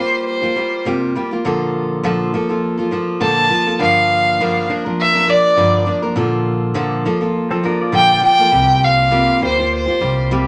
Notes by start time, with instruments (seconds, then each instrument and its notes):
Already playing: steel-string acoustic guitar G3 A#3 F4 G4
0.00 violin C5
0.27 violin C5
0.42 steel-string acoustic guitar A#3 F4 G4
0.56 steel-string acoustic guitar G3 A#3 F4 G4
0.85 steel-string acoustic guitar C3 G3 A#3 F4 G4
1.15 steel-string acoustic guitar G3 A#3 F4 G4
1.31 steel-string acoustic guitar A#3 F4 G4
1.45 steel-string acoustic guitar A#2 D3 F3 A#3 F4 A4
2.03 steel-string acoustic guitar A#2 D3 F3 A#3 F4 A4
2.34 steel-string acoustic guitar F3 A#3 F4 A4
2.49 steel-string acoustic guitar F3 A#3 F4 A4
2.77 steel-string acoustic guitar F3 A#3 F4 A4
2.91 steel-string acoustic guitar F3 A#3 F4 A4
3.21 steel-string acoustic guitar A#2 D3 F3 A#3 F4 A4, violin A5
3.50 steel-string acoustic guitar F3 A#3 F4 A4
3.66 steel-string acoustic guitar F3 A#3 F4 A4
3.79 steel-string acoustic guitar G2 D3 F3 A#3 D4 A#4, violin F5
4.40 steel-string acoustic guitar G2 D3 F3 A#3 D4 A#4
4.68 steel-string acoustic guitar F3 A#3 D4 A#4
4.85 steel-string acoustic guitar F3 A#3 D4 A#4
5.01 violin E5
5.14 steel-string acoustic guitar F3 A#3 D4 A#4
5.27 steel-string acoustic guitar F3 A#3 D4 A#4, violin D5
5.56 steel-string acoustic guitar G2 D3 F3 A#3 D4 A#4
5.86 steel-string acoustic guitar F3 A#3 D4 A#4
6.02 steel-string acoustic guitar F3 A#3 D4 A#4
6.16 steel-string acoustic guitar A#2 D3 F3 A#3 F4 A4
6.74 steel-string acoustic guitar A#2 D3 F3 A#3 F4 A4
7.05 steel-string acoustic guitar F3 A#3 F4 A4
7.21 steel-string acoustic guitar F3 A#3 F4 A4
7.51 steel-string acoustic guitar F3 A#3 F4 A4, pedal steel guitar C4 A4
7.63 steel-string acoustic guitar F3 A#3 F4 A4, pedal steel guitar D4 A#4
7.81 pedal steel guitar F4 D5
7.92 steel-string acoustic guitar A#2 D3 F3 A#3 F4 A4, violin G5
8.22 steel-string acoustic guitar F3 A#3 F4 A4, violin G5
8.39 steel-string acoustic guitar F3 A#3 F4 A4
8.51 upright bass C2, steel-string acoustic guitar C3 G3 A#3 F4 G4
8.84 violin F5
9.11 steel-string acoustic guitar C3 G3 A#3 F4 G4
9.41 upright bass D2, steel-string acoustic guitar G3 A#3 F4 G4, violin C5
9.58 steel-string acoustic guitar A#3 F4 G4
9.75 violin C5
9.86 steel-string acoustic guitar A#3 F4 G4
10.01 upright bass C2, steel-string acoustic guitar G3 A#3 F4 G4
10.31 steel-string acoustic guitar C3 G3 A#3 F4 G4